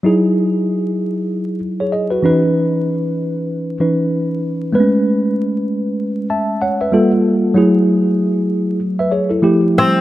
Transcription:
0.03 F#3 D#4 E4 G#4
1.80 G#4 C#5
1.92 G#4 D#5
2.10 F#4 B4
2.23 E3 C#4 D#4 B4
3.80 E3 C#4 D#4 B4
4.72 G#3 A3 B3 B4
4.80 C#4
6.30 E5 A5
6.62 C#5 F#5
6.81 B4 E5
6.92 G3 A#3 F4 A4
7.54 F#3 A3 E4 G#4
8.99 B4 E5
9.12 G#4 C#5
9.30 E4 A4
9.42 F3 A3 E4 G4
9.78 C4

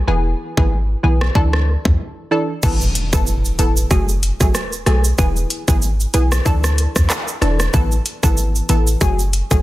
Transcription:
0.07 E1 E3 B3 G#4
0.57 G#1 E3 B3 G#4, kick
1.03 B1 E3 B3 G#4
1.21 cross-stick
1.35 D2 E3 D4 A4, kick
1.53 cross-stick
1.85 E2, kick
2.31 E3 D4 A4
2.63 A1 E3 B3 A4, kick, crash, impact, shaker
2.81 shaker
2.95 closed hi-hat, shaker
3.13 G#1 E3 B3 A4, kick, shaker
3.27 shaker
3.45 shaker
3.59 A1 E3 B3 A4, closed hi-hat, shaker
3.77 shaker
3.90 F#1 F#3 A3 G#4, kick, shaker
4.09 shaker
4.23 closed hi-hat, shaker
4.40 G#1 F#3 A3 G#4, kick, shaker
4.55 cross-stick, shaker
4.73 shaker
4.86 B1 F#3 A3 G#4, cross-stick, closed hi-hat, shaker
5.04 shaker
5.18 E1 E3 B3 G#4, kick, shaker
5.36 shaker
5.50 closed hi-hat, shaker
5.68 G#1 E3 B3 G#4, kick, shaker
5.82 shaker
6.00 shaker
6.14 B1 E3 B3 G#4, closed hi-hat, shaker
6.32 cross-stick, shaker
6.45 D2 E3 D4 A4, kick, shaker
6.64 cross-stick, shaker
6.78 closed hi-hat, shaker
6.96 E2, kick, cross-stick, shaker
7.10 cross-stick, clap, shaker
7.28 shaker
7.41 E1 E3 D4 A4, cross-stick, closed hi-hat, high timbale, shaker
7.60 cross-stick, shaker
7.73 A1 E3 B3 A4, kick, shaker
7.92 shaker
8.06 closed hi-hat, shaker
8.23 G#1 E3 B3 A4, kick, shaker
8.37 shaker
8.55 shaker
8.69 A1 E3 B3 A4, closed hi-hat, shaker
8.87 shaker
9.01 F#1 F#3 A3 G#4, kick, shaker
9.19 shaker
9.33 closed hi-hat, shaker
9.51 G#1 F#3 A3 G#4, kick, shaker

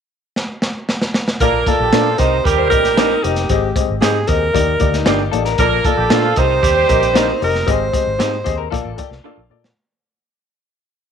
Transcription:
0.36 snare
0.62 snare
0.89 snare
1.02 snare
1.14 snare
1.28 snare
1.40 A#1 A#2 A#3 F4 A4 A#4 D5, kick, closed hi-hat
1.67 A#3 F4 A4 D5, kick, closed hi-hat
1.80 A#1 G3 G4
1.92 A#2 F3 A#3 D4 F4 A4 D5, snare, closed hi-hat
2.17 C2 C3 D#3 C4 D#4 G4 A#4 C5 D#5, kick, closed hi-hat
2.44 D#2 G3 G4 A#4, kick, closed hi-hat
2.58 C5
2.70 A#1 C4 G4 A#4 D#5, kick, closed hi-hat
2.83 G4, snare, closed hi-hat
2.97 A#3 C4 D4 D#4 G4 A#4 D#5, snare, closed hi-hat
3.10 D#4
3.24 F1 C4 G4 A#4 D#5, closed hi-hat
3.36 snare, closed hi-hat
3.49 G#1 G#2 C4 G4 G#4 D#5, kick, closed hi-hat
3.75 C4 G4 G#4 D#5, kick, closed hi-hat
3.90 G#1
4.01 G#2 C4 D#4 G4 G#4 D#5, snare, closed hi-hat
4.27 D#2 C4 G4 G#4 A#4 D#5, kick, closed hi-hat
4.53 D#2 D#3 A#3 D#4 G4 D5, kick, closed hi-hat
4.79 D2 A#3 D#4 G4 D5, kick, closed hi-hat
4.94 D#4, snare, closed hi-hat
5.05 G1 A#3 D4 D#4 F4 G4 D5, snare, closed hi-hat
5.19 G4
5.31 A1 A#3 D#4 G4 A4 D5, closed hi-hat
5.45 A#4, snare, closed hi-hat
5.58 A#1 A#2 A#3 F4 A4 A#4 D5, kick, closed hi-hat
5.85 A#3 F4 A4 D5, kick, closed hi-hat
5.97 A#1 G3 G4
6.10 A#2 F3 A#3 D4 F4 A4 D5, snare, closed hi-hat
6.36 C2 C3 D#3 C4 D#4 G4 A#4 C5 D#5, kick, closed hi-hat
6.62 D#2 G3 G4, kick, closed hi-hat
6.75 C5
6.88 A#1 C4 G4 A#4 D#5, kick, closed hi-hat
7.01 G4, closed hi-hat
7.13 A#3 C4 D4 D#4 G4 A#4 D#5, snare, closed hi-hat
7.26 D#4
7.41 F1 C4 G4 A#4 D#5, open hi-hat
7.55 snare
7.66 G#1 G#2 C4 G4 G#4 D#5, kick, closed hi-hat
7.71 C5
7.92 C4 G4 G#4 D#5, kick, closed hi-hat
8.07 G#1
8.18 G#2 C4 D#4 G4 G#4 D#5, snare, closed hi-hat
8.44 D#2 C4 G4 G#4 C5 D#5, kick, closed hi-hat
8.58 A#4
8.70 A#1 A#2 A#3 F4 A4 D5, kick, closed hi-hat
8.85 A1
8.96 A#3 F4 G4 A4 D5, kick, closed hi-hat
9.11 C2 F4, snare
9.24 A#3 D4 F4 A4 D5
9.37 A#1
9.50 A#2 A#3 F4 A4 D5
9.64 snare

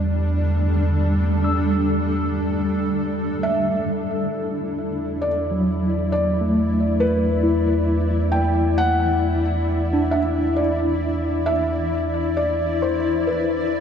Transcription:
Already playing: E2 G3 D4 A4 D5
1.44 E6
3.42 E2 E4 E5
3.96 E5
4.47 D5
5.22 D5
5.51 F#3
6.12 D5
6.41 A3
7.00 B4
7.43 E4
8.32 G5
8.78 F#5
9.93 D4
10.11 E5
10.56 D5
10.60 E4
11.46 E5
12.37 D5
12.82 C5
13.27 B4

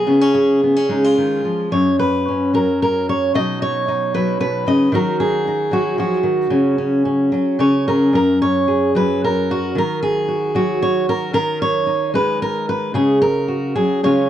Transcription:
Already playing: G#4
0.07 C#3 B3
0.21 C#4
0.34 G#4
0.63 B3
0.76 C#4
0.89 G#3 D#4
1.04 F4
1.18 D#3
1.45 F3
1.72 F#2 C#5
1.99 B4
2.28 C#4
2.54 F#3 A#4
2.82 A#4
3.09 C#5
3.34 B2 F#3 D#4 D#5
3.62 C#5
3.88 D#4
4.14 F#3 B4
4.40 B2 B4
4.67 C#3 D#5
4.92 D#3 F#3 D#4 F#4 A#4
5.20 G#4
5.47 D#4
5.71 F#3 F#4
5.98 F3 F#4
6.23 D#3
6.50 C#3 C#4
6.78 C#4
7.05 C#4
7.32 F#3 C#4
7.59 C#3 C#4 C#5
7.88 G#4 A#4
8.13 F#2 A#4
8.42 C#5
8.68 G#4
8.95 F#3 B4
9.24 A#4
9.51 F#4
9.75 D#3 A#4
10.02 G#4
10.28 F#4
10.55 F#3 F#4
10.82 C#5
11.09 A#4
11.33 D#3 A#4
11.62 C#5
11.86 D#4
12.14 G#3 B4
12.42 A#4
12.69 B4
12.94 C#3 G#4
13.22 A#4
13.48 F#4
13.75 F#3 G#4
14.03 C#3 G#3 C#4 F4 C#5

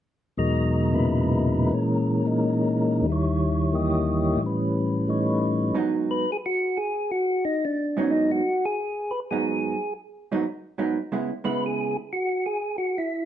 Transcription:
0.37 E2 B2 F#3 G#3 D#4 A#4
0.92 A#2 C#3 G#3 E4 B4
1.70 A#2 E3 G#3 C#4
1.74 A#4
2.25 G#3 A#3 D#4 A#4
3.01 D#2 D#3
3.06 G3 E4
3.12 C#5
3.72 E3 A#3 G4 D#5
4.35 A2 E3
4.41 G3 C#4
4.46 B4
5.07 G3 A3 D#4 C#5
5.74 G#2 F#3 B3 D#4
6.11 B4
6.32 G#4
6.46 F#4
6.77 G#4
7.12 F#4
7.45 D#4
7.65 D4
7.97 G#2 F#3 B3 C#4 D#4
8.11 D#4
8.31 F#4
8.65 G#4
9.11 B4
9.31 G#2 F#3 B3 D#4 G#4
10.32 G#2 F#3 B3 D#4
10.78 G#2 F#3 B3 D#4
11.12 C#3 G#3 B3 E4
11.44 C#3 G#3 B3 E4 B4
11.66 G#4
12.13 F#4
12.46 G#4
12.78 F#4
12.98 E4

